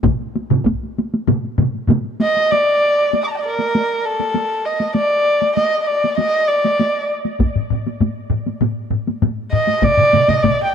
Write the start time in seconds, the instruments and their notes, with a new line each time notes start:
0.03 taiko, taiko low-mid, taiko mid, taiko high
0.20 taiko high
0.35 taiko high
0.50 taiko low-mid, taiko mid, taiko high
0.65 taiko, taiko high
0.83 taiko high
0.98 taiko high
1.14 taiko high
1.27 taiko low-mid, taiko mid, taiko high
1.44 taiko high
1.58 taiko low-mid, taiko mid, taiko high
1.74 taiko high
1.88 taiko low-mid, taiko mid, taiko high
2.05 taiko high
2.20 erhu D#5, taiko high
2.37 taiko high
2.52 erhu D5, taiko high
3.13 taiko high
3.21 erhu D6 D#6
3.28 erhu A5 A#5
3.35 erhu D#5 G5
3.42 erhu A#4 D5
3.59 taiko high
3.75 taiko high
4.05 erhu A4
4.20 taiko high
4.34 taiko high
4.65 erhu D#5
4.80 taiko high
4.95 erhu D5, taiko high
5.42 taiko high
5.56 erhu D#5, taiko high
5.80 erhu D#5
5.87 erhu D5
6.04 taiko high
6.18 erhu D#5, taiko high
6.48 erhu D5
6.65 taiko high
6.79 taiko high
7.25 taiko high
7.40 taiko, taiko low-mid, taiko high
7.56 taiko low-mid
7.70 taiko low-mid
7.87 taiko high
8.00 taiko low-mid, taiko high
8.30 taiko low-mid
8.46 taiko high
8.61 taiko low-mid, taiko high
8.91 taiko low-mid
9.07 taiko high
9.22 taiko low-mid, taiko high
9.52 erhu D#5, taiko low-mid
9.67 taiko high
9.82 erhu D5, taiko, taiko low-mid, taiko mid, taiko high
9.97 taiko low-mid, taiko mid
10.13 taiko low-mid, taiko mid, taiko high
10.28 erhu D#5, taiko low-mid, taiko mid, taiko high
10.43 erhu D5, taiko, taiko low-mid, taiko mid, taiko high
10.64 erhu G5